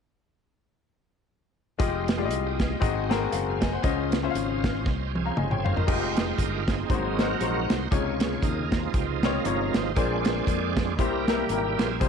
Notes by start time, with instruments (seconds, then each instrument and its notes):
1.78 fingered electric bass F1, grand piano G#3 F4 G4 D#5, tonewheel organ G#3 F4 G4 D#5, kick, closed hi-hat
2.08 snare, closed hi-hat
2.18 grand piano G#3 F4 G4 D5
2.25 grand piano D#5
2.30 fingered electric bass C2, closed hi-hat
2.46 tonewheel organ G4 D#5
2.60 tonewheel organ G#4 F5, kick, snare, closed hi-hat
2.71 tonewheel organ G4 D#5
2.80 fingered electric bass G#1, grand piano G#2 C4 F#4 G#4 D#5, tonewheel organ A#3 F#4 G#4 D#5, kick, closed hi-hat
2.87 tonewheel organ C4
3.09 grand piano C4 F#4 G#4 A#4, snare, closed hi-hat
3.32 fingered electric bass F#1, tonewheel organ F#4 D#5, grand piano C5 F5, closed hi-hat
3.48 tonewheel organ G#4 F5
3.62 tonewheel organ A#4 F#5, grand piano D#5 G#5, kick, snare, closed hi-hat
3.72 tonewheel organ C5 G#5, grand piano C5 F#5
3.82 fingered electric bass C#2, grand piano C#3 C#4 F4 C5 D#5, tonewheel organ C#4 F4 C5 D#5, kick, closed hi-hat
4.12 snare, closed hi-hat
4.23 grand piano C#4 F4 C5 E5
4.31 grand piano F5
4.35 fingered electric bass G#1, closed hi-hat
4.64 kick, snare, closed hi-hat
4.86 fingered electric bass C2, kick, snare
5.07 tonewheel organ G4
5.15 tonewheel organ C4 F4 G#4, high tom
5.26 grand piano F5 A#5
5.37 fingered electric bass G1, grand piano D#5 G#5, mid tom
5.51 tonewheel organ C5 G#5, grand piano C#5 G5, mid tom
5.59 tonewheel organ A4
5.64 tonewheel organ G#4 A#4 F5, grand piano C5 F5, floor tom
5.76 tonewheel organ D#4 C5, grand piano A#4 D#5, floor tom
5.87 fingered electric bass F1, grand piano G#3 F4 G4 D#5, tonewheel organ G#3 D#4 F4 G4 C5, kick, crash
6.17 snare, closed hi-hat
6.37 fingered electric bass G1, tonewheel organ A#4, kick, closed hi-hat
6.68 tonewheel organ C4 D#4 G#4, kick, snare, closed hi-hat
6.89 fingered electric bass G#1, grand piano G#2 G#3 D#4 F#4 C5, tonewheel organ F#3 A#3 C4, kick, closed hi-hat
7.18 grand piano G#3 D#4 F#4 C5, tonewheel organ D#4 F#4 A#4, snare, closed hi-hat
7.41 fingered electric bass A#1, grand piano G#3 D#4 F#4 C5, closed hi-hat
7.69 fingered electric bass C2, tonewheel organ C5, snare, closed hi-hat
7.91 fingered electric bass C#2, grand piano C3 C#3 D#4 F4 C#5, tonewheel organ F4 G#4 C#5, kick, closed hi-hat
8.20 snare, closed hi-hat
8.41 fingered electric bass D#2, tonewheel organ D#4 F4 A#4, kick, closed hi-hat
8.71 tonewheel organ C3 F3 D#4, kick, snare, closed hi-hat
8.82 tonewheel organ G#4
8.94 fingered electric bass C#2, tonewheel organ G#3 D#4 G4, kick, closed hi-hat
9.23 grand piano C4 D#4 F4 C#5, tonewheel organ D#4 F4 A#4, snare, closed hi-hat
9.45 fingered electric bass G1, grand piano C3 D#4 F4 C#5, closed hi-hat
9.74 fingered electric bass G#1, tonewheel organ C5, snare, closed hi-hat
9.95 fingered electric bass A#1, grand piano A#2 A#3 D4 G#4 C5, tonewheel organ G#3 C4 D4 F4 G#4 D5, kick, closed hi-hat
10.25 snare, closed hi-hat
10.47 fingered electric bass F2, kick, closed hi-hat
10.77 kick, snare, closed hi-hat
10.98 fingered electric bass C2, grand piano C3 A#3 E4 G4 C5, tonewheel organ G3 A#3 E4 G4 A#4, kick, closed hi-hat
11.27 tonewheel organ A#3 E4 G4, grand piano A#3 E4 G4 A#4, snare, closed hi-hat
11.49 fingered electric bass G#1, grand piano A#3 E4 G4 A#4, closed hi-hat
11.78 fingered electric bass A#1, tonewheel organ C4 F4 G#4, snare, closed hi-hat
12.00 fingered electric bass C2, grand piano C3 G3 C4 F4 C5, tonewheel organ G#3 C4 F4, kick, closed hi-hat